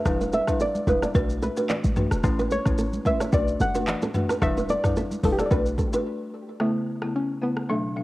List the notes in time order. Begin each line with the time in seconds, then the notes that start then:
Already playing: E5
0.05 E1 G3 D4 E4 B4, kick, cross-stick, low conga, shaker
0.21 B4, high conga, shaker
0.33 A4 E5, high conga, shaker
0.47 G3 D4 E4 B4, kick, cross-stick, shaker
0.60 A4 D5, shaker
0.75 high conga, shaker
0.87 E1 G3 D4 E4 B4, kick, high conga, shaker
1.02 D5, cross-stick, shaker
1.15 B1 A3 D4 F#4 B4, kick, shaker
1.30 shaker
1.42 A4 B4, high conga, shaker
1.57 A3 D4 F#4 B4, shaker
1.69 D5, clap, low conga, shaker
1.84 A1, high conga, shaker
1.96 A3 D4 F#4 B4, mid tom, high conga, low conga, shaker
2.11 E1, cross-stick, shaker
2.24 A1 A3 C#4 E4 B4, kick, cross-stick, low conga, shaker
2.39 B4, high conga, shaker
2.51 A4 C#5, high conga, shaker
2.66 A1 A3 C#4 E4 B4, kick, cross-stick, shaker
2.78 A4, shaker
2.93 high conga, shaker
3.05 A3 C#4 E4 B4 E5, kick, high conga, shaker
3.20 C#5, cross-stick, shaker
3.33 B1 A3 D4 F#4 B4 D5, kick, shaker
3.48 shaker
3.60 F#1 A4 F#5, high conga, shaker
3.75 A3 D4 F#4 B4, shaker
3.87 clap, low conga, shaker
4.02 A4, high conga, shaker
4.14 A3 D4 F#4 B4, mid tom, high conga, low conga, shaker
4.29 B4, cross-stick, shaker
4.42 E1 G3 D4 E4 B4 E5, kick, cross-stick, low conga, shaker
4.57 B4, high conga, shaker
4.69 A4 D5, high conga, shaker
4.84 G3 D4 E4 B4, kick, cross-stick, mid tom, shaker
4.96 A4, shaker
5.11 high conga, shaker
5.24 E1 G3 D4 E4 A4 B4, kick, open hi-hat, high conga, shaker
5.32 G4
5.39 A4 D5, cross-stick, shaker
5.46 D5
5.51 B1 A3 D4 F#4 B4, kick, shaker
5.66 shaker
5.78 A4, kick, high conga, shaker
5.93 A3 D4 F#4 B4, shaker
6.60 C#3 A3 B3 E4, cross-stick
7.02 C#3 A3 B3 E4, cross-stick
7.16 C#4
7.42 C#3 A3 B3 E4
7.57 cross-stick
7.69 B2 F#3 A3 D4
7.96 B2 F#3 A3 D4